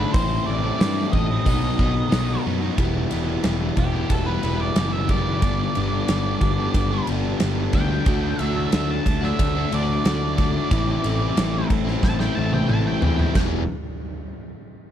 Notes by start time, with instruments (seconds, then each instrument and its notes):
Already playing: overdriven electric guitar D3 F#4, lead electric guitar B4
0.00 distorted electric guitar F#3, overdriven electric guitar A3 D4
0.13 picked electric bass A1, overdriven electric guitar A2 E3 A3 C4 E4, lead electric guitar C5, kick, open hi-hat
0.46 picked electric bass A1, distorted electric guitar E3 A3 C4 E4, lead electric guitar D5
0.62 overdriven electric guitar A3 C4 E4
0.79 picked electric bass G2, overdriven electric guitar A2 E3 A3 C4 E4, snare, open hi-hat
0.97 distorted electric guitar A3 C4 E4
1.12 picked electric bass A1, overdriven electric guitar E3 A3 C4 E4, lead electric guitar D#5, muted distorted electric guitar stroke, kick
1.29 distorted electric guitar A3 C4 E4, muted overdriven electric guitar stroke
1.45 picked electric bass B1, overdriven electric guitar B2 F#3 B3 D#4 F#4, distorted electric guitar D#3, kick, open hi-hat
1.78 picked electric bass B1, distorted electric guitar D#3, overdriven electric guitar F#3 B3 D#4 F#4, kick
1.95 muted overdriven electric guitar stroke
2.09 picked electric bass B1, overdriven electric guitar B2 F#3 B3 D#4 F#4, distorted electric guitar D#3, snare, open hi-hat
2.26 overdriven electric guitar B3 D#4 F#4
2.31 distorted electric guitar F#3
2.43 picked electric bass F#2, distorted electric guitar D#3, overdriven electric guitar F#3 B3 D#4 F#4
2.60 distorted electric guitar F#3, overdriven electric guitar B3 D#4 F#4
2.76 picked electric bass E1, overdriven electric guitar E2 B2 E3 G3 E4 G4, distorted electric guitar B3, kick, ride
2.93 overdriven electric guitar E3 G3 E4 G4
3.10 picked electric bass E1, overdriven electric guitar E3 G3 E4 G4, distorted electric guitar B3, ride
3.27 distorted electric guitar G3 B3 E4
3.43 picked electric bass E1, overdriven electric guitar E2 B2 E3 G3 E4 G4, distorted electric guitar B3, snare, ride
3.60 overdriven electric guitar E3 G3 E4 G4
3.77 picked electric bass E1, distorted electric guitar E3 G3 B3 E4, lead electric guitar G4, muted overdriven electric guitar stroke, kick, ride
3.92 overdriven electric guitar E3 G3 E4 G4, distorted electric guitar B3
4.10 picked electric bass E1, lead electric guitar A4, kick, ride
4.25 overdriven electric guitar E3 G3 E4 G4, distorted electric guitar B3, lead electric guitar B4
4.42 picked electric bass E1, overdriven electric guitar E3 G3 E4 G4, distorted electric guitar B3, ride
4.60 lead electric guitar D5
4.75 picked electric bass F#1, overdriven electric guitar E2 B2 E3 G3 E4 G4, distorted electric guitar B3, snare, ride
4.92 distorted electric guitar G3 B3 E4, lead electric guitar E5
5.08 overdriven electric guitar E3 G3 E4 G4, distorted electric guitar B3, lead electric guitar D5, kick, ride
5.25 overdriven electric guitar E3 G3 E4 G4, distorted electric guitar B3
5.41 picked electric bass G1, overdriven electric guitar G2 D3 G3 B3 D4 G4, kick, ride
5.58 overdriven electric guitar G3 B3 D4 G4
5.75 picked electric bass G1, distorted electric guitar D3, overdriven electric guitar G3 B3 D4 G4, ride
5.93 distorted electric guitar G3 B3 D4
6.08 picked electric bass G1, overdriven electric guitar G2 D3 G3 B3 D4 G4, snare, ride
6.25 overdriven electric guitar G3 B3 D4 G4
6.41 picked electric bass G1, distorted electric guitar D3 G3 B3 D4, muted overdriven electric guitar stroke, kick, ride
6.58 overdriven electric guitar G3 B3 D4 G4
6.74 picked electric bass G1, kick, ride
6.91 overdriven electric guitar G3 B3 D4 G4
7.07 picked electric bass G1, distorted electric guitar D3, overdriven electric guitar G3 B3 D4 G4, ride
7.39 picked electric bass G1, overdriven electric guitar G2 D3 G3 B3 D4 G4, snare, ride
7.58 distorted electric guitar G3 B3 D4
7.73 picked electric bass D2, distorted electric guitar D3, overdriven electric guitar G3 B3 D4 G4, lead electric guitar G5, kick, ride
7.90 overdriven electric guitar G3 B3 D4 G4
8.05 picked electric bass D2, overdriven electric guitar D3 A3 D4 F#4, distorted electric guitar F#3, kick, ride
8.22 overdriven electric guitar A3 D4 F#4
8.39 picked electric bass D2, overdriven electric guitar D3 A3 D4 F#4, distorted electric guitar F#3, lead electric guitar E5, ride
8.57 distorted electric guitar F#3 A3 D4
8.72 picked electric bass D2, overdriven electric guitar D3 A3 D4 F#4, distorted electric guitar F#3, lead electric guitar E5, snare, ride
8.87 overdriven electric guitar A3 D4 F#4, lead electric guitar A5
9.05 picked electric bass D2, distorted electric guitar D3 F#3 A3 D4, muted overdriven electric guitar stroke, kick, ride
9.21 overdriven electric guitar A3 D4 F#4, lead electric guitar E5, snare
9.25 distorted electric guitar F#3
9.39 picked electric bass D2, kick, ride
9.55 distorted electric guitar F#3, overdriven electric guitar A3 D4 F#4
9.71 picked electric bass D2, overdriven electric guitar D3 A3 D4 F#4, distorted electric guitar F#3, lead electric guitar D5, ride
10.04 picked electric bass D2, overdriven electric guitar D3 A3 D4 F#4, distorted electric guitar F#3, snare, ride
10.22 distorted electric guitar F#3 A3 D4
10.37 overdriven electric guitar D3 A3 D4 F#4, distorted electric guitar F#3, kick, ride
10.53 overdriven electric guitar A3 D4 F#4
10.58 distorted electric guitar F#3
10.70 picked electric bass A1, overdriven electric guitar A2 E3 A3 C4 E4, kick, ride
10.86 overdriven electric guitar A3 C4 E4
11.03 picked electric bass A1, overdriven electric guitar E3 A3 C4 E4, ride
11.21 distorted electric guitar A3 C4 E4
11.35 picked electric bass A1, overdriven electric guitar A2 E3 A3 C4 E4, snare, ride
11.52 overdriven electric guitar A3 C4 E4
11.69 picked electric bass A1, distorted electric guitar E3 A3 C4, muted overdriven electric guitar stroke, kick, ride
11.73 distorted electric guitar E4
11.84 overdriven electric guitar A3 C4 E4, snare
12.03 picked electric bass A1, lead electric guitar A5, kick, snare
12.19 overdriven electric guitar A3 C4 E4, lead electric guitar G5, snare
12.35 picked electric bass A1, overdriven electric guitar E3 A3 C4 E4, lead electric guitar A5
12.52 lead electric guitar G5, high tom
12.67 picked electric bass A1, overdriven electric guitar A2 E3 A3 C4 E4, lead electric guitar A5, mid tom
12.87 distorted electric guitar A3 C4 E4, lead electric guitar G5
13.01 picked electric bass E2, overdriven electric guitar E3 A3 C4 E4, lead electric guitar G5, floor tom
13.18 overdriven electric guitar A3 C4 E4, floor tom
13.34 picked electric bass E1, overdriven electric guitar E2 B2 E3 G3 B3 E4, kick, snare, crash